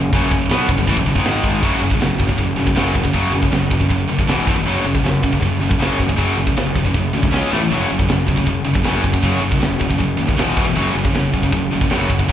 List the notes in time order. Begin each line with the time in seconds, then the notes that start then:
Already playing: F#1
0.13 F#1 F#2 C#3 F#3, kick, open hi-hat
0.31 F#1 F#2 C#3, kick, open hi-hat
0.49 B1 B2 F#3 B3, snare, open hi-hat
0.69 F#1 F#2 C#3, kick, open hi-hat
0.78 F#1 F#2 C#3, kick
0.87 A1 A2 E3, kick, open hi-hat
0.97 F#1 F#2 C#3, kick
1.06 F#1 F#2 C#3, kick, open hi-hat
1.15 G#1 G#2 D#3 G#3, kick
1.25 snare, open hi-hat
1.44 kick
1.63 F#1 F#2 C#3 F#3, kick, crash
1.82 F#1 F#2 C#3
1.91 F#2 C#3, kick
2.00 F#1 F#2 C#3, snare, ride bell
2.20 F#2 C#3, kick
2.29 F#2 C#3, kick
2.38 F#1 F#2 C#3, kick, ride bell
2.56 F#1 F#2 C#3
2.67 F#2 C#3, kick
2.74 F#1 F#2 C#3 F#3, snare, ride bell
2.95 F#2 C#3, kick
3.03 F#2 C#3, kick
3.13 F#1 F#2 C#3 F#3, kick, ride bell
3.30 F#1 F#2 C#3
3.42 F#2 C#3, kick
3.50 F#1 F#2 C#3, snare, ride bell
3.71 F#2 C#3, kick
3.81 F#2 C#3, kick
3.90 F#1 F#2 C#3, kick, ride bell
4.08 F#1 F#2 C#3
4.19 F#2 C#3, kick
4.26 E1 E2 B2 E3, snare, ride bell
4.47 E1 E2 B2 E3, kick
4.56 E2 B2
4.65 F#1 F#2 C#3 F#3, ride bell
4.84 F#1 F#2 C#3
4.95 F#2 C#3, kick
5.03 F#1 F#2 C#3, snare, ride bell
5.23 F#2 C#3, kick
5.32 F#2 C#3, kick
5.40 F#1 F#2 C#3, kick, ride bell
5.60 F#1 F#2 C#3
5.69 F#2 C#3, kick
5.79 F#1 F#2 C#3 F#3, snare, ride bell
5.98 F#2 C#3, kick
6.08 F#2 C#3, kick
6.16 F#1 F#2 C#3 F#3, kick, ride bell
6.38 F#1 F#2 C#3
6.47 F#2 C#3, kick
6.57 F#1 F#2 C#3, snare, ride bell
6.76 F#2 C#3, kick
6.85 F#2 C#3, kick
6.94 F#1 F#2 C#3, kick, ride bell
7.13 D2 F#2 C#3
7.23 F#2 C#3, kick
7.32 C#2 C#3 G#3 C#4, snare, ride bell
7.52 A1 A2 E3 A3, snare
7.63 A2 E3
7.71 F#1 F#2 C#3 F#3, ride bell
7.90 F#1 F#2 C#3
7.99 F#2 C#3, kick
8.09 F#1 F#2 C#3, snare, ride bell
8.28 F#2 C#3, kick
8.37 F#2 C#3, kick
8.46 F#1 F#2 C#3, kick, ride bell
8.65 F#1 F#2 C#3
8.75 F#2 C#3, kick
8.84 F#1 F#2 C#3 F#3, snare, ride bell
9.03 F#2 C#3, kick
9.13 F#2 C#3, kick
9.23 F#1 F#2 C#3 F#3, kick, ride bell
9.41 F#1 F#2 C#3
9.52 F#2 C#3, kick
9.61 F#1 F#2 C#3, snare, ride bell
9.80 F#2 C#3, kick
9.89 F#2 C#3, kick
9.98 F#1 F#2 C#3, kick, ride bell
10.17 D#2 F#2 C#3
10.27 F#2 C#3, kick
10.38 E1 E2 B2 E3, snare, ride bell
10.56 E1 E2 B2 E3, kick
10.66 E2 B2
10.75 F#1 F#2 C#3 F#3, ride bell
10.94 F#1 F#2 C#3
11.04 F#2 C#3, kick
11.14 F#1 F#2 C#3, snare, ride bell
11.33 F#2 C#3, kick
11.43 F#2 C#3, kick
11.52 F#1 F#2 C#3, kick, ride bell
11.71 F#1 F#2 C#3
11.81 F#2 C#3, kick
11.90 F#1 F#2 C#3 F#3, snare, ride bell
12.10 F#2 C#3, kick
12.19 F#2 C#3, kick
12.28 F#2 C#3 F#3